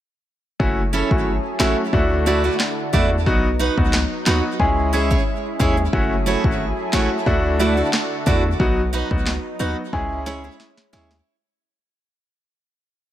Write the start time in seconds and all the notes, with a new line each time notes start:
0.60 F#1 F#3 A3 C#4 E4 F#4 G#4 A4, kick
0.93 C#4 E4 A4 C#5
1.11 G#1 A3 C#4 E4 F#4, kick
1.59 A1 A3 C#4 E4 F#4 A4 C#5, snare, clap
1.93 D2 D3 A3 D4 E4 F#4, kick
2.26 A3 D4 E4 F#4 D5
2.44 A3 E4 F#4 D5
2.59 snare, clap
2.93 E2 A3 D4 E4 F#4 D5, kick
3.26 B1 F#3 B3 D#4 F#4, kick
3.59 D#4 F#4 B4 D#5
3.77 C#2 F#3 B3 D#4 F#4, kick
3.93 snare, clap
4.26 D#2 F#3 B3 D#4 F#4 B4 D#5, snare, clap
4.60 C#2 G#3 C#4 E4 G#4, kick
4.93 G#3 C#4 E4 G#4 C#5
5.10 C#4 E4 G#4 C#5, kick
5.59 D#2 G#3 C#4 E4 G#4 C#5, kick
5.77 muted steel-string acoustic guitar stroke
5.93 F#1 F#3 A3 C#4 E4 F#4 G#4 A4, kick
6.26 A3 E4 F#4 C#5
6.44 G#1 A3 C#4 E4 F#4, kick
6.93 A1 A3 C#4 E4 F#4 C#5, snare, clap
7.26 D2 D3 A3 D4 E4 F#4, kick
7.59 A3 D4 E4 F#4 D5
7.77 A3 E4 F#4 D5
7.93 snare, clap
8.26 E2 A3 D4 E4 F#4 D5, kick
8.59 B1 F#3 B3 D#4 F#4, kick
8.93 D#4 F#4 B4 D#5
9.11 C#2 F#3 B3 D#4 F#4, kick
9.26 snare, clap
9.59 D#2 F#3 B3 D#4 F#4 B4 D#5
9.93 C#2 G#3 C#4 E4 G#4, kick
10.26 G#3 C#4 E4 G#4 C#5, snare
10.44 C#4 E4 G#4 C#5
10.60 snare
10.77 snare
10.93 D#2 G#3 C#4 E4 G#4 C#5, snare
11.11 muted steel-string acoustic guitar stroke, snare